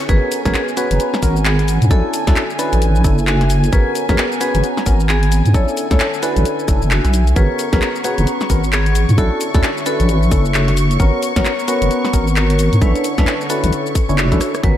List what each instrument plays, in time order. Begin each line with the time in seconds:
Already playing: ambient pad C#5, violin section C#6
0.00 closed hi-hat, shaker
0.09 wobble bass G#1, ambient pad B3, synth stab B3 C#4 F#4 A#4, vibraphone G#4 B4, violin section G#5, kick, closed hi-hat, shaker
0.32 open hi-hat, shaker
0.45 wobble bass B1, synth stab B3 C#4 F#4 A#4, vibraphone G#4 B4, kick, snare, closed hi-hat, shaker
0.50 ambient pad A#5
0.54 clap, shaker
0.59 ambient pad F#5
0.68 shaker
0.77 synth stab B3 C#4 F#4 B4, vibraphone G#4 B4, open hi-hat, shaker
0.91 wobble bass F#1, closed hi-hat, shaker
1.00 closed hi-hat, shaker
1.14 snare, shaker
1.23 wobble bass G#1, synth stab B3 C#4 F#4 A#4, kick, open hi-hat, shaker
1.36 shaker
1.45 vibraphone B3 G#4, clap, shaker
1.59 closed hi-hat
1.68 open hi-hat, shaker
1.82 wobble bass G#2, closed hi-hat, shaker
1.91 wobble bass B1, ambient pad D3, synth stab C#4 D4 E4 A4, vibraphone F#4 A4, kick, closed hi-hat, shaker
2.14 open hi-hat, shaker
2.27 wobble bass D2, synth stab C#4 D4 E4 A4, vibraphone F#4 A4, kick, snare, closed hi-hat, shaker
2.36 clap, shaker
2.48 ambient pad A4, shaker
2.59 synth stab C#4 D4 E4 B4, vibraphone F#4 A4, open hi-hat, shaker
2.73 wobble bass A1, ambient pad E5, closed hi-hat, shaker
2.82 closed hi-hat, shaker
2.96 shaker
3.04 wobble bass F#1, synth stab C#4 D4 E4 A4, kick, open hi-hat, shaker
3.18 shaker
3.27 vibraphone D4 F#4, clap, shaker
3.41 snare, closed hi-hat
3.50 open hi-hat, shaker
3.64 closed hi-hat, shaker
3.72 wobble bass G#1, ambient pad B3, synth stab B3 C#4 F#4 A#4, vibraphone G#4 B4, kick, closed hi-hat, shaker
3.95 open hi-hat, shaker
4.09 wobble bass B1, synth stab B3 C#4 F#4 A#4, vibraphone G#4 B4, kick, snare, closed hi-hat, shaker
4.18 ambient pad A#5, clap, shaker
4.32 shaker
4.41 synth stab B3 C#4 F#4 B4, vibraphone G#4 B4, open hi-hat, shaker
4.55 wobble bass F#1, ambient pad F#5, closed hi-hat, shaker
4.64 closed hi-hat, shaker
4.77 snare, shaker
4.86 wobble bass G#1, synth stab B3 C#4 F#4 A#4, kick, open hi-hat, shaker
5.00 shaker
5.09 vibraphone B3 G#4, clap, shaker
5.23 closed hi-hat
5.32 open hi-hat, shaker
5.45 wobble bass G#2, closed hi-hat, shaker
5.54 wobble bass B1, ambient pad D3, synth stab C#4 D4 E4 A4, vibraphone A4 C#5, kick, closed hi-hat, shaker
5.68 ambient pad A4, shaker
5.77 open hi-hat, shaker
5.91 wobble bass D2, synth stab C#4 D4 E4 A4, vibraphone A4 C#5, kick, snare, closed hi-hat, shaker
6.00 clap, shaker
6.14 shaker
6.22 synth stab C#4 D4 E4 B4, vibraphone F#4 A4, open hi-hat, shaker
6.36 wobble bass A1, ambient pad E5, closed hi-hat, shaker
6.45 closed hi-hat, shaker
6.59 shaker
6.68 wobble bass F#1, synth stab C#4 D4 E4 A4, kick, open hi-hat, shaker
6.82 wobble bass F#1, shaker
6.91 vibraphone D4 F#4, clap, shaker
7.05 wobble bass B1, snare, closed hi-hat, shaker
7.14 open hi-hat, shaker
7.27 closed hi-hat, shaker
7.36 wobble bass G#1, ambient pad B3, synth stab B3 C#4 F#4 A#4, vibraphone G#4 B4, violin section C#6, kick, closed hi-hat, shaker
7.57 ambient pad A#5, open hi-hat, shaker
7.62 ambient pad C#5
7.73 wobble bass B1, synth stab B3 C#4 F#4 A#4, vibraphone G#4 B4, kick, snare, closed hi-hat, shaker
7.82 clap, shaker
7.95 shaker
8.04 synth stab B3 C#4 F#4 B4, vibraphone G#4 B4, open hi-hat, shaker
8.18 wobble bass F#1, ambient pad F#5, closed hi-hat, shaker
8.27 closed hi-hat, shaker
8.41 snare, shaker
8.50 wobble bass G#1, synth stab B3 C#4 F#4 A#4, kick, open hi-hat, shaker
8.64 shaker
8.73 vibraphone B3 G#4, clap, shaker
8.86 closed hi-hat
8.95 open hi-hat, shaker
9.09 wobble bass G#2, closed hi-hat, shaker
9.18 wobble bass B1, ambient pad D3, synth stab C#4 D4 E4 A4, vibraphone F#4 A4, kick, closed hi-hat, shaker
9.40 ambient pad E5, open hi-hat, shaker
9.50 ambient pad A4, vibraphone A4
9.54 wobble bass D2, synth stab C#4 D4 E4 A4, vibraphone F#4, kick, snare, closed hi-hat, shaker
9.63 clap, shaker
9.77 shaker
9.86 synth stab C#4 D4 E4 B4, vibraphone F#4 A4, open hi-hat, shaker
10.00 wobble bass A1, closed hi-hat, shaker
10.09 closed hi-hat, shaker
10.23 shaker
10.32 wobble bass F#1, synth stab C#4 D4 E4 A4, kick, open hi-hat, shaker
10.45 shaker
10.54 vibraphone D4 F#4, clap, shaker
10.68 snare, closed hi-hat
10.77 open hi-hat, shaker
10.91 closed hi-hat, shaker
11.00 wobble bass G#1, ambient pad B3, synth stab B3 C#4 F#4 A#4, vibraphone A#4 C#5, kick, closed hi-hat, shaker
11.20 ambient pad A#5, open hi-hat, shaker
11.36 wobble bass B1, synth stab B3 C#4 F#4 A#4, vibraphone A#4 C#5, kick, snare, closed hi-hat, shaker
11.45 clap, shaker
11.59 shaker
11.68 synth stab B3 C#4 F#4 B4, vibraphone A#4 C#5, ambient pad F#5, open hi-hat, shaker
11.82 wobble bass F#1, closed hi-hat, shaker
11.91 closed hi-hat, shaker
12.05 snare, shaker
12.13 wobble bass G#1, synth stab B3 C#4 F#4 A#4, kick, open hi-hat, shaker
12.27 shaker
12.36 vibraphone F#4 A#4, clap, shaker
12.50 closed hi-hat
12.59 open hi-hat, shaker
12.73 wobble bass G#2, closed hi-hat, shaker
12.81 wobble bass B1, ambient pad D3, synth stab C#4 D4 E4 A4, vibraphone D4 B4, kick, closed hi-hat, shaker
12.96 closed hi-hat, shaker
13.04 open hi-hat, shaker
13.09 ambient pad A4
13.18 wobble bass D2, synth stab C#4 D4 E4 A4, vibraphone D4 B4, kick, snare, closed hi-hat, shaker
13.27 clap, shaker
13.41 shaker
13.50 synth stab C#4 D4 E4 B4, vibraphone F#4 A4, open hi-hat, shaker
13.64 wobble bass A1, ambient pad E5, closed hi-hat, shaker
13.73 closed hi-hat, shaker
13.86 shaker
13.95 kick, open hi-hat, shaker
14.09 wobble bass F#1, synth stab C#4 D4 E4 C#5, shaker
14.18 vibraphone D4 F#4, clap, shaker
14.32 wobble bass B1, synth stab C#4 D4 E4 A4, kick, snare, closed hi-hat, shaker
14.41 cross-stick, open hi-hat, shaker
14.55 cross-stick, closed hi-hat, shaker
14.63 wobble bass G#1, synth stab B3 C#4 F#4 A#4, ambient pad B3, vibraphone B4, violin section G#5, kick, closed hi-hat